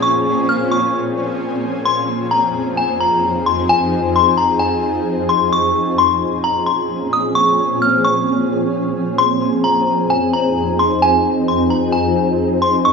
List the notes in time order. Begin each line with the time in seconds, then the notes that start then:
Already playing: A#2 F3 C4 C#4 G#4
0.02 C#6
0.49 F6
0.72 C#6
1.85 F2 F3 C4 D#4 G#4 C6
2.31 A#5
2.77 G#5
3.00 A#5
3.46 C6
3.69 G#5
4.16 C6
4.37 A#5
4.59 G#5
5.29 C6
5.52 A#2 F3 C4 C#4 G#4 C#6
5.98 C6
6.44 A#5
6.66 C6
7.13 D#6
7.35 C#6
7.82 F6
8.04 C#6
9.18 F2 D#4 C6
9.64 A#5
10.10 G#5
10.33 A#5
10.79 C6
11.02 G#5
11.48 C6
11.70 A#5
11.92 G#5
12.62 C6
12.85 C#6